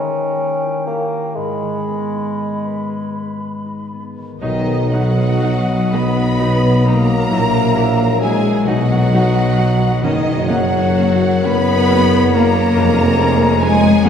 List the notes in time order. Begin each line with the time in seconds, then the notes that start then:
Already playing: D#3 C#4 D#4 D#5 G5
0.13 D#4
0.38 A#3
0.63 E4
0.87 A#3 G4
1.12 A#4
1.36 G#2 G#3 B5
1.62 D#3
1.89 B3
2.15 D#4
2.40 G#4
2.65 B4
2.90 G#4
3.15 B4
3.41 G#4
3.66 D#4
3.93 B3
4.18 D#3
4.41 B1 B2 D#3 F#3 D#4 D#5
4.67 F#3
4.92 F#3 B3 D#4 F#4 F#5
5.18 D#4
5.44 F#3 D#4 F#4
5.69 B4
5.93 B1 F#3 B3 D#4 B4 D#5 B5
6.17 B4
6.40 F#3 D#4
6.83 F#3 A#3 D#4 A#4 A#5
6.88 A#5
7.07 F#3
7.29 A#1 A#2 F#3 E4 E5
7.52 A#3
7.74 F#3 C#4 E4
7.97 E4
8.19 G#3 E4 F#4 G#4 G#5
8.24 F#3
8.64 B1 B2 F#3 D#4 F#4 D#5 F#5
8.88 F#3
9.10 F#3 B3 D#4
9.56 F#3 D#4 F#4
9.79 B4
10.01 F#1 F#2 D#3 F#3 A#3 C#4 D#4 C#5 D#5
10.25 C#3
10.48 F#3 A#3 C#4 F#4 F#5
10.73 C#4
10.97 A#3 C#4 F#4
11.22 A#4
11.44 F#1 F#2 A#3 B3 C#4 B4 C#5 B5
11.69 A#4
11.90 A#3 C#4 C#5
12.13 F#4
12.33 A#3 C#4 A#4 A#5
12.56 C#3
12.76 F1 F2 G#3 B3 C#4
12.99 F3
13.19 B3 C#4
13.41 C#4
13.61 G#3 B3 C#4 G#4 G#5
13.84 B4
14.03 F#1 F#2 F#3 A#3 C#4 F#4 F#5